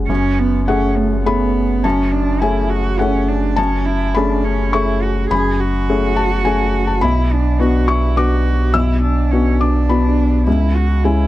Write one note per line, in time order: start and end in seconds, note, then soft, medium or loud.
0.00 0.09 F#2 medium
0.00 0.12 G#3 soft
0.00 0.12 C#4 soft
0.00 0.12 G#4 soft
0.00 0.12 F#5 medium
0.00 0.12 G#5 medium
0.07 5.27 F#1 medium
0.07 0.66 F#2 medium
0.07 0.40 C#4 medium
0.39 0.67 B3 medium
0.68 1.23 A3 soft
0.68 0.99 C#4 medium
0.68 1.23 C#4 soft
0.68 1.23 G#4 medium
0.68 1.22 F#5 medium
0.97 1.24 A3 medium
1.25 1.80 A3 soft
1.25 1.85 B3 medium
1.25 1.80 C#4 soft
1.25 1.80 G#4 medium
1.25 1.80 B5 medium
1.84 2.40 F#2 medium
1.84 2.13 C#4 medium
1.84 2.38 A5 medium
2.11 2.42 D4 medium
2.40 2.96 A3 soft
2.40 2.96 C#4 soft
2.40 2.71 E4 medium
2.40 2.96 G#4 soft
2.40 2.96 G#5 medium
2.70 3.01 F#4 medium
2.99 3.54 A3 soft
2.99 3.30 C#4 medium
2.99 3.54 C#4 soft
2.99 3.54 G#4 soft
2.99 3.53 F#5 medium
3.28 3.59 D4 medium
3.56 4.14 F#2 medium
3.56 3.87 C#4 medium
3.56 4.11 A5 medium
3.85 4.17 E4 medium
4.15 4.70 A3 medium
4.15 4.70 C#4 medium
4.15 4.46 D4 medium
4.15 4.70 G#4 medium
4.15 4.69 B5 medium
4.44 4.75 C#4 medium
4.73 5.27 A3 soft
4.73 5.28 C#4 soft
4.73 5.04 E4 medium
4.73 5.28 G#4 soft
4.73 5.27 C#6 medium
5.02 5.30 F#4 medium
5.31 7.04 F#1 medium
5.31 5.87 F#2 medium
5.31 5.61 G#4 medium
5.31 6.13 B5 medium
5.60 7.04 F#4 medium
5.89 6.42 A3 soft
5.89 6.42 C#4 soft
5.89 6.42 G#4 medium
6.16 6.43 A5 medium
6.45 6.99 A3 soft
6.45 6.99 C#4 soft
6.45 6.99 G#4 soft
6.45 6.85 G#5 medium
6.87 7.01 A5 medium
7.01 10.49 B1 medium
7.01 7.58 B1 medium
7.01 7.34 E4 medium
7.01 7.84 B5 medium
7.32 7.62 D4 medium
7.59 8.13 B3 medium
7.59 8.13 D4 medium
7.59 8.13 F#4 medium
7.59 7.89 F#4 medium
7.88 8.18 E4 medium
7.88 8.15 C#6 medium
8.16 8.70 B3 soft
8.16 8.70 D4 soft
8.16 8.75 F#4 medium
8.16 8.70 F#4 soft
8.16 8.70 D6 medium
8.74 9.30 B1 medium
8.74 9.02 E4 medium
8.74 9.56 E6 medium
9.02 9.32 D4 medium
9.31 9.85 B3 soft
9.31 9.61 C#4 medium
9.31 9.86 D4 soft
9.31 9.86 F#4 soft
9.60 10.46 D4 medium
9.60 9.87 D6 medium
9.89 10.43 B3 soft
9.89 10.43 D4 soft
9.89 10.43 F#4 soft
9.89 10.43 B5 medium
10.47 11.03 C#2 medium
10.47 11.27 C#2 medium
10.47 10.77 E4 medium
10.75 11.06 F#4 medium
11.04 11.27 G#3 soft
11.04 11.27 C#4 soft
11.04 11.27 E4 medium
11.04 11.27 E4 soft
11.04 11.27 G#5 medium